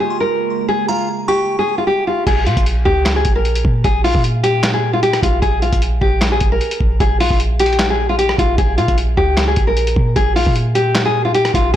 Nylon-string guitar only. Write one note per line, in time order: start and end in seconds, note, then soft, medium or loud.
0.00 0.18 G#4 medium
0.20 0.66 A#4 medium
0.68 0.87 G#4 loud
0.89 1.07 F4 medium
1.28 1.57 G4 medium
1.59 1.77 G#4 medium
1.78 1.86 F4 medium
1.87 2.05 G4 medium
2.07 2.25 F4 medium
2.27 2.45 G#4 loud
2.46 2.64 F4 medium
2.85 3.14 G4 medium
3.16 3.34 G#4 medium
3.36 3.82 A#4 medium
3.84 4.02 G#4 loud
4.04 4.22 F4 medium
4.43 4.72 G4 medium
4.74 4.92 G#4 medium
4.93 5.02 F4 medium
5.03 5.21 G4 medium
5.23 5.41 F4 medium
5.42 5.60 G#4 loud
5.62 5.80 F4 medium
6.01 6.30 G4 medium
6.32 6.50 G#4 medium
6.52 6.98 A#4 medium
7.00 7.18 G#4 loud
7.20 7.38 F4 medium
7.60 7.88 G4 medium
7.90 8.08 G#4 medium
8.09 8.18 F4 medium
8.18 8.37 G4 medium
8.39 8.57 F4 medium
8.58 8.76 G#4 loud
8.78 8.96 F4 medium
9.17 9.46 G4 medium
9.48 9.66 G#4 medium
9.67 10.13 A#4 medium
10.16 10.34 G#4 loud
10.36 10.54 F4 medium
10.75 11.04 G4 medium
11.05 11.24 G#4 medium
11.25 11.34 F4 medium
11.35 11.53 G4 medium
11.54 11.72 F4 medium